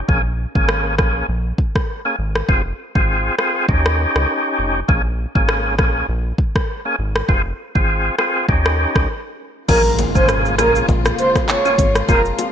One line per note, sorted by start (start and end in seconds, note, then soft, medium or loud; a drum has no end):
0.08 0.46 A#1 loud
0.08 0.22 A#3 medium
0.08 0.22 C#4 medium
0.08 0.22 G#4 medium
0.08 kick loud
0.55 1.00 G#1 medium
0.55 0.95 A#3 medium
0.55 0.95 C#4 medium
0.55 0.96 G#4 medium
0.55 kick medium
0.69 cross-stick loud
0.98 1.23 A#1 medium
0.98 1.26 A#3 medium
0.98 1.27 C#4 medium
0.98 1.27 G#4 medium
0.98 kick medium
0.98 cross-stick medium
1.29 1.53 A#1 loud
1.58 kick medium
1.75 kick medium
1.75 cross-stick medium
2.05 2.16 A#3 medium
2.05 2.16 C#4 medium
2.05 2.16 G#4 medium
2.19 2.43 G#1 medium
2.35 cross-stick medium
2.48 2.73 F1 loud
2.48 2.62 C4 medium
2.48 2.62 F4 medium
2.48 2.62 G#4 loud
2.48 kick loud
2.95 3.30 G#1 medium
2.95 3.35 C4 medium
2.95 3.35 F4 medium
2.95 3.36 G#4 medium
2.95 kick medium
3.38 3.66 C4 medium
3.38 3.67 F4 medium
3.38 3.67 G#4 medium
3.38 cross-stick medium
3.68 4.06 D#2 loud
3.68 4.80 C#4 medium
3.68 4.80 D#4 medium
3.68 4.80 G4 loud
3.68 kick medium
3.86 cross-stick loud
4.16 4.26 C#2 medium
4.16 cross-stick medium
4.59 4.83 F1 medium
4.88 5.26 A#1 loud
4.88 5.02 A#3 medium
4.88 5.02 C#4 medium
4.88 5.02 G#4 loud
4.88 kick loud
5.35 5.80 G#1 medium
5.35 5.75 A#3 medium
5.35 5.75 C#4 medium
5.35 5.76 G#4 medium
5.35 kick medium
5.49 cross-stick loud
5.78 6.03 A#1 loud
5.78 6.06 A#3 medium
5.78 6.07 C#4 medium
5.78 6.07 G#4 medium
5.78 kick medium
5.78 cross-stick medium
6.09 6.33 A#1 loud
6.38 kick medium
6.56 kick medium
6.56 cross-stick medium
6.85 6.96 A#3 medium
6.85 6.96 C#4 medium
6.85 6.96 G#4 medium
6.99 7.23 G#1 medium
7.16 cross-stick loud
7.28 7.53 F1 loud
7.28 7.42 C4 medium
7.28 7.42 F4 medium
7.28 7.42 G#4 medium
7.28 kick loud
7.75 8.10 G#1 medium
7.75 8.15 C4 medium
7.75 8.15 F4 medium
7.75 8.16 G#4 medium
7.75 kick medium
8.18 8.46 C4 medium
8.18 8.47 F4 medium
8.18 8.47 G#4 medium
8.18 cross-stick medium
8.48 8.86 D#2 loud
8.48 9.09 C#4 medium
8.48 9.09 D#4 medium
8.48 9.09 G4 loud
8.48 kick medium
8.66 cross-stick loud
8.96 9.06 C#2 medium
8.96 kick medium
8.96 cross-stick medium
9.68 10.06 A#1 loud
9.68 12.06 C#3 medium
9.68 12.52 G#3 medium
9.68 9.82 A#3 medium
9.68 12.06 A#3 medium
9.68 9.82 C#4 medium
9.68 12.52 F4 medium
9.68 9.82 G#4 loud
9.68 9.91 A#4 loud
9.68 kick loud
9.68 crash loud
9.68 high bongo medium
9.68 impact medium
9.68 shaker medium
9.85 shaker medium
9.99 closed hi-hat medium
9.99 high bongo medium
9.99 shaker medium
10.15 10.60 G#1 medium
10.15 10.55 A#3 medium
10.15 10.55 C#4 medium
10.15 10.56 G#4 medium
10.15 10.25 C5 medium
10.15 kick medium
10.15 shaker medium
10.29 cross-stick loud
10.29 shaker medium
10.45 shaker soft
10.58 10.83 A#1 medium
10.58 10.86 A#3 medium
10.58 10.86 C#4 medium
10.58 10.87 G#4 medium
10.58 10.71 A#4 medium
10.58 cross-stick medium
10.58 closed hi-hat medium
10.58 high bongo medium
10.58 shaker medium
10.75 shaker medium
10.88 11.13 A#1 loud
10.88 kick loud
10.88 high bongo medium
10.88 shaker medium
11.05 cross-stick loud
11.05 shaker medium
11.19 11.31 C5 medium
11.19 closed hi-hat medium
11.19 shaker soft
11.35 kick medium
11.35 cross-stick medium
11.35 high bongo medium
11.35 shaker medium
11.49 11.93 C#5 medium
11.49 clap medium
11.49 shaker medium
11.65 11.76 A#3 medium
11.65 11.76 C#4 medium
11.65 11.76 G#4 medium
11.65 high bongo medium
11.65 shaker medium
11.78 12.02 G#1 medium
11.78 kick loud
11.78 closed hi-hat medium
11.78 low bongo medium
11.78 shaker medium
11.95 cross-stick loud
11.95 shaker medium
12.08 12.33 F1 loud
12.08 12.52 C3 medium
12.08 12.52 F3 medium
12.08 12.22 C4 medium
12.08 12.22 F4 medium
12.08 12.22 G#4 loud
12.08 12.21 A#4 loud
12.08 kick loud
12.08 high bongo medium
12.08 shaker medium
12.25 shaker medium
12.39 closed hi-hat medium
12.39 high bongo medium
12.39 shaker medium